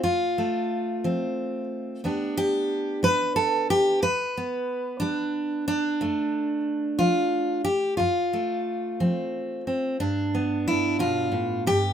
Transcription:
0.03 0.63 F2 medium
0.03 2.03 F4 medium
0.38 2.00 A3 soft
1.04 1.64 F3 medium
1.04 2.00 C4 medium
2.04 2.64 E2 medium
2.04 3.99 B3 soft
2.04 3.99 D4 soft
2.04 2.37 G4 soft
2.37 3.03 G4 medium
3.03 3.63 G3 medium
3.03 3.35 B4 loud
3.36 3.69 A4 medium
3.70 4.02 G4 loud
4.02 4.62 E2 medium
4.02 5.68 B4 loud
4.37 5.98 B3 soft
5.00 5.61 G3 medium
5.00 5.66 D4 medium
5.68 7.66 D4 medium
6.01 6.60 F2 medium
6.01 7.96 A3 soft
6.99 7.60 F3 medium
6.99 7.64 F4 medium
7.64 7.97 G4 medium
7.97 8.59 F2 medium
7.97 9.99 F4 medium
8.33 9.97 A3 soft
9.00 9.60 F3 medium
9.00 9.66 C4 soft
9.67 9.96 C4 soft
10.00 11.65 G2 medium
10.00 11.33 D4 medium
10.35 11.93 B3 soft
10.68 11.00 E4 medium
10.99 11.31 B2 medium
10.99 11.66 F4 medium
11.32 11.65 A2 medium
11.66 11.93 G2 medium
11.66 11.93 G4 loud

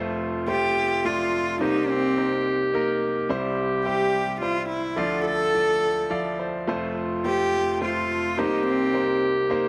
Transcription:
0.00 1.56 F1 medium
0.00 1.56 F2 medium
0.00 0.35 A3 medium
0.00 0.35 F4 medium
0.00 1.62 F4 medium
0.00 0.35 C5 medium
0.48 0.92 A3 medium
0.48 0.92 F4 medium
0.48 1.07 G4 loud
0.48 0.92 C5 medium
1.05 1.48 A3 medium
1.05 1.49 F4 medium
1.05 1.61 F4 medium
1.05 1.49 D5 medium
1.60 3.25 C2 medium
1.60 3.25 C3 medium
1.60 2.04 A#3 medium
1.60 2.05 D#4 medium
1.60 1.92 D#4 medium
1.60 3.29 G4 loud
1.60 2.05 C5 medium
1.91 2.46 C4 medium
2.17 2.61 A#3 medium
2.17 2.61 D#4 medium
2.17 2.61 C5 medium
2.74 3.17 A#3 medium
2.74 3.17 D#4 medium
2.74 3.18 A#4 medium
3.29 4.94 C2 medium
3.29 4.94 C3 medium
3.29 3.73 G3 medium
3.29 3.73 E4 medium
3.29 4.68 G4 loud
3.29 3.74 C5 loud
3.85 4.29 G3 medium
3.85 4.29 E4 medium
3.85 4.37 G4 medium
3.85 4.30 C5 medium
4.41 4.85 G3 medium
4.41 4.86 E4 medium
4.41 4.67 F4 medium
4.41 4.86 C5 medium
4.69 4.99 E4 medium
4.96 6.63 D2 medium
4.96 6.63 D3 medium
4.96 5.41 F3 medium
4.96 5.41 E4 medium
4.96 5.25 F4 medium
4.96 6.34 A4 loud
4.96 5.42 D5 medium
5.25 6.35 A4 loud
5.54 5.98 F3 medium
5.54 5.99 E4 medium
5.54 5.99 D5 medium
6.10 6.55 F3 medium
6.10 6.55 E4 medium
6.10 6.55 D5 medium
6.10 6.37 F5 medium
6.39 6.66 C5 medium
6.67 8.34 F1 medium
6.67 8.34 F2 medium
6.67 7.12 A3 medium
6.67 8.39 F4 medium
6.67 7.12 F4 medium
6.67 7.13 C5 medium
7.24 7.69 A3 medium
7.24 7.69 F4 medium
7.24 7.78 G4 loud
7.24 7.70 C5 medium
7.81 8.25 A3 medium
7.81 8.26 F4 medium
7.81 8.41 F4 medium
7.81 8.26 C5 medium
8.37 9.69 C2 medium
8.37 9.69 C3 medium
8.37 8.82 A#3 medium
8.37 8.82 D#4 medium
8.37 8.66 D#4 medium
8.37 9.69 G4 loud
8.37 8.82 C5 medium
8.67 9.19 C4 medium
8.93 9.38 A#3 medium
8.93 9.38 D#4 medium
8.93 9.38 C5 medium
9.50 9.69 A#3 medium
9.50 9.69 D#4 medium
9.50 9.69 C5 medium

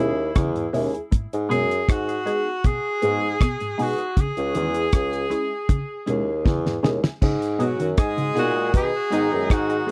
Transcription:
0.00 0.31 D#2 medium
0.00 0.11 B2 medium
0.00 0.20 G#3 medium
0.00 0.20 C#4 medium
0.00 0.20 E4 medium
0.00 0.74 E4 medium
0.00 0.20 G#4 loud
0.35 0.69 E2 loud
0.35 0.49 C#3 medium
0.35 kick loud
0.35 cross-stick loud
0.35 closed hi-hat medium
0.55 0.68 G#2 medium
0.55 closed hi-hat soft
0.73 0.91 D#2 medium
0.73 0.87 B2 medium
0.73 0.96 G#3 medium
0.73 0.96 C#4 medium
0.73 0.93 E4 medium
0.73 0.92 G#4 loud
0.73 open hi-hat medium
0.94 1.01 E4 soft
0.94 1.01 G#4 soft
0.94 closed hi-hat soft
1.11 1.25 G#2 medium
1.11 kick loud
1.11 closed hi-hat medium
1.33 1.48 G#2 loud
1.33 closed hi-hat medium
1.49 1.84 F#2 medium
1.49 1.63 B2 medium
1.49 1.72 G#3 medium
1.49 1.72 B3 medium
1.49 1.72 D#4 medium
1.49 1.72 G#4 loud
1.49 1.93 G#4 loud
1.49 closed hi-hat medium
1.71 closed hi-hat medium
1.89 2.22 G#2 medium
1.89 2.67 F#4 loud
1.89 kick loud
1.89 cross-stick loud
1.89 closed hi-hat medium
2.09 closed hi-hat medium
2.26 2.48 G#3 medium
2.26 2.48 B3 medium
2.26 2.49 D#4 medium
2.26 2.49 G#4 loud
2.26 closed hi-hat medium
2.64 2.78 B2 medium
2.64 3.83 G#4 loud
2.64 kick medium
2.64 closed hi-hat medium
3.02 3.16 G#2 medium
3.02 3.36 G#2 medium
3.02 3.24 G#3 medium
3.02 3.25 B3 medium
3.02 3.25 D#4 medium
3.02 3.25 G#4 medium
3.02 closed hi-hat medium
3.41 3.54 B2 medium
3.41 kick loud
3.41 cross-stick loud
3.41 closed hi-hat medium
3.60 3.73 G#2 medium
3.60 closed hi-hat soft
3.78 3.93 B2 medium
3.78 4.01 G#3 medium
3.78 4.01 B3 medium
3.78 3.98 D#4 medium
3.78 3.98 G#4 loud
3.78 open hi-hat medium
3.82 4.22 F#4 medium
3.98 4.06 D#4 soft
3.98 4.06 G#4 soft
3.98 closed hi-hat soft
4.17 4.30 C#3 medium
4.17 6.47 G#4 loud
4.17 kick loud
4.17 closed hi-hat medium
4.37 4.53 C#2 loud
4.37 closed hi-hat medium
4.54 4.89 E2 medium
4.54 4.69 D#3 medium
4.54 4.77 G#3 medium
4.54 4.77 C#4 medium
4.54 4.77 E4 medium
4.54 4.77 G#4 loud
4.54 closed hi-hat medium
4.74 closed hi-hat medium
4.93 5.26 C#2 medium
4.93 kick loud
4.93 cross-stick loud
4.93 closed hi-hat medium
5.13 closed hi-hat medium
5.30 5.53 G#3 medium
5.30 5.53 C#4 medium
5.30 5.53 E4 medium
5.30 5.53 G#4 loud
5.30 closed hi-hat medium
5.69 5.83 C#3 medium
5.69 kick loud
5.69 closed hi-hat medium
6.06 6.41 D#2 medium
6.06 6.21 B2 medium
6.06 6.29 G#3 medium
6.06 6.29 C#4 medium
6.06 6.30 E4 medium
6.06 6.30 G#4 medium
6.06 closed hi-hat medium
6.45 6.79 E2 medium
6.45 6.59 C#3 medium
6.45 kick loud
6.45 snare medium
6.65 6.78 G#2 medium
6.65 snare medium
6.83 7.01 D#2 medium
6.83 6.97 B2 medium
6.83 7.05 G#3 medium
6.83 7.06 C#4 medium
6.83 7.02 E4 medium
6.83 7.02 G#4 loud
6.83 snare medium
7.03 7.11 E4 soft
7.03 7.11 G#4 soft
7.03 snare medium
7.22 7.72 G#2 loud
7.22 7.35 C#3 medium
7.22 kick loud
7.22 crash medium
7.42 closed hi-hat medium
7.59 7.73 B2 medium
7.59 7.90 F#3 medium
7.59 7.82 G#3 medium
7.59 7.82 B3 medium
7.59 7.82 D#4 medium
7.59 7.90 F#4 medium
7.59 7.82 G#4 loud
7.59 closed hi-hat medium
7.79 7.96 F#2 medium
7.79 7.92 D#3 medium
7.79 closed hi-hat medium
7.97 8.31 G#2 medium
7.97 8.70 G#3 loud
7.97 8.70 G#4 loud
7.97 kick loud
7.97 cross-stick loud
7.97 closed hi-hat loud
8.17 8.30 C#3 medium
8.17 closed hi-hat medium
8.34 8.69 A#2 medium
8.34 8.50 B2 medium
8.34 8.58 G#3 medium
8.34 8.58 B3 medium
8.34 8.58 D#4 medium
8.34 8.58 G#4 loud
8.34 closed hi-hat medium
8.39 8.73 F#4 loud
8.74 8.91 B2 loud
8.74 8.90 D#3 medium
8.74 8.90 D#4 medium
8.74 9.55 G#4 loud
8.74 kick loud
8.74 closed hi-hat medium
9.10 9.30 G#2 medium
9.10 9.84 D#3 medium
9.10 9.29 G#3 medium
9.10 9.30 B3 medium
9.10 9.30 D#4 medium
9.10 9.84 D#4 medium
9.10 9.31 G#4 loud
9.10 closed hi-hat medium
9.31 9.48 F#2 medium
9.31 9.52 G#3 medium
9.31 9.52 B3 medium
9.31 9.53 D#4 medium
9.31 9.53 G#4 medium
9.50 9.84 G#2 loud
9.50 9.91 F#4 medium
9.50 kick loud
9.50 cross-stick loud
9.50 closed hi-hat medium
9.69 9.77 D#4 soft
9.69 9.77 G#4 soft
9.69 closed hi-hat soft
9.87 9.91 G#3 medium
9.87 9.91 B3 medium
9.87 9.91 D#4 medium
9.87 9.91 G#4 loud

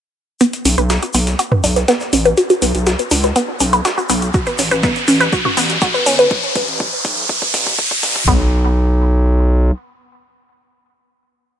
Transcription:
0.41 0.49 B3 loud
0.41 closed hi-hat medium
0.41 closed hi-hat soft
0.41 riser medium
0.41 shaker medium
0.53 closed hi-hat soft
0.53 shaker soft
0.65 0.76 B1 medium
0.65 0.74 C#4 medium
0.65 closed hi-hat medium
0.65 open hi-hat loud
0.65 shaker medium
0.78 0.98 B1 loud
0.78 0.86 B4 loud
0.78 closed hi-hat soft
0.78 shaker soft
0.90 0.95 F#4 medium
0.90 snare loud
0.90 closed hi-hat soft
0.90 open hi-hat medium
0.90 shaker medium
1.03 1.14 F#4 medium
1.03 closed hi-hat soft
1.03 shaker soft
1.14 1.35 B1 medium
1.14 1.23 B3 medium
1.14 closed hi-hat medium
1.14 open hi-hat loud
1.14 shaker medium
1.27 snare medium
1.27 closed hi-hat soft
1.27 shaker soft
1.39 1.44 F#4 medium
1.39 closed hi-hat medium
1.39 closed hi-hat soft
1.39 shaker soft
1.52 1.60 B4 medium
1.52 mid tom medium
1.64 1.84 B1 medium
1.64 1.76 D4 medium
1.64 closed hi-hat medium
1.64 open hi-hat loud
1.64 shaker medium
1.76 1.81 B4 medium
1.76 snare soft
1.76 closed hi-hat soft
1.76 shaker soft
1.88 1.97 B3 loud
1.88 snare loud
1.88 closed hi-hat medium
1.88 closed hi-hat soft
1.88 shaker soft
2.00 snare soft
2.00 shaker soft
2.13 2.33 A1 loud
2.13 2.22 C#4 medium
2.13 closed hi-hat medium
2.13 open hi-hat loud
2.13 shaker medium
2.25 2.34 B4 loud
2.25 closed hi-hat soft
2.25 shaker soft
2.37 2.43 F#4 medium
2.37 closed hi-hat medium
2.37 closed hi-hat soft
2.37 shaker soft
2.50 2.61 F#4 medium
2.50 closed hi-hat soft
2.50 shaker soft
2.62 2.72 B1 medium
2.62 2.71 B3 medium
2.62 closed hi-hat medium
2.62 open hi-hat loud
2.62 shaker medium
2.75 2.95 B1 medium
2.75 closed hi-hat soft
2.75 shaker soft
2.87 2.92 F#4 medium
2.87 snare loud
2.87 closed hi-hat medium
2.87 closed hi-hat soft
2.87 shaker medium
2.99 3.08 B4 medium
2.99 closed hi-hat soft
2.99 shaker soft
3.11 3.31 C#2 loud
3.11 3.23 D4 medium
3.11 closed hi-hat medium
3.11 open hi-hat loud
3.11 shaker loud
3.24 3.29 B4 medium
3.24 snare soft
3.24 closed hi-hat soft
3.24 shaker soft
3.36 3.45 B3 loud
3.36 closed hi-hat medium
3.36 closed hi-hat soft
3.36 shaker medium
3.60 3.81 B1 medium
3.60 3.69 C#4 medium
3.60 closed hi-hat medium
3.60 open hi-hat loud
3.60 shaker medium
3.73 3.81 B4 loud
3.73 closed hi-hat soft
3.73 shaker soft
3.85 3.90 F#4 medium
3.85 snare loud
3.85 closed hi-hat medium
3.85 closed hi-hat soft
3.85 shaker medium
3.98 4.09 F#4 medium
3.98 shaker soft
4.10 4.30 B1 medium
4.10 4.18 B3 medium
4.10 closed hi-hat medium
4.10 open hi-hat loud
4.10 shaker loud
4.22 closed hi-hat soft
4.22 shaker soft
4.34 4.39 F#4 medium
4.34 kick loud
4.34 closed hi-hat medium
4.34 closed hi-hat soft
4.34 shaker medium
4.46 4.55 B4 medium
4.46 closed hi-hat soft
4.46 shaker soft
4.58 4.69 A1 loud
4.58 4.71 C#4 medium
4.58 closed hi-hat medium
4.58 open hi-hat loud
4.58 shaker loud
4.71 4.91 A1 medium
4.71 4.76 B4 medium
4.71 closed hi-hat soft
4.71 shaker soft
4.83 4.92 B3 loud
4.83 kick loud
4.83 snare loud
4.83 closed hi-hat soft
4.83 open hi-hat medium
4.83 shaker medium
4.95 closed hi-hat soft
4.95 shaker soft
5.08 5.28 A1 medium
5.08 5.17 C#4 medium
5.08 closed hi-hat medium
5.08 open hi-hat loud
5.08 shaker medium
5.20 5.29 B4 loud
5.20 snare medium
5.20 closed hi-hat soft
5.20 shaker soft
5.33 5.38 F#4 medium
5.33 kick loud
5.33 closed hi-hat medium
5.33 closed hi-hat soft
5.33 shaker soft
5.45 5.57 F#4 medium
5.45 mid tom medium
5.57 5.77 A1 medium
5.57 5.66 B3 medium
5.57 closed hi-hat medium
5.57 open hi-hat loud
5.57 shaker loud
5.69 snare soft
5.69 closed hi-hat soft
5.69 shaker soft
5.81 5.87 F#4 medium
5.81 kick loud
5.81 snare loud
5.81 closed hi-hat medium
5.81 closed hi-hat soft
5.81 shaker medium
5.94 6.03 B4 medium
5.94 snare soft
5.94 shaker soft
6.06 6.27 G1 loud
6.06 6.18 C#4 medium
6.06 closed hi-hat medium
6.06 open hi-hat loud
6.06 shaker loud
6.19 6.24 B4 medium
6.19 closed hi-hat soft
6.19 shaker soft
6.31 kick loud
6.31 closed hi-hat soft
6.43 closed hi-hat soft
6.55 6.66 A1 medium
6.55 kick loud
6.55 open hi-hat loud
6.68 6.88 A1 medium
6.68 closed hi-hat soft
6.80 kick loud
6.80 closed hi-hat soft
6.93 closed hi-hat soft
7.05 7.25 B1 loud
7.05 kick loud
7.05 open hi-hat loud
7.17 closed hi-hat soft
7.29 kick loud
7.29 closed hi-hat soft
7.42 kick medium
7.54 7.74 A1 medium
7.54 kick loud
7.54 open hi-hat loud
7.67 kick medium
7.67 closed hi-hat soft
7.79 kick loud
7.79 closed hi-hat soft
7.91 kick medium
8.03 8.23 A1 medium
8.03 kick loud
8.03 open hi-hat loud
8.16 kick loud
8.16 closed hi-hat soft
8.28 9.71 B1 loud
8.28 8.51 B3 medium
8.28 kick loud
8.28 open hi-hat medium

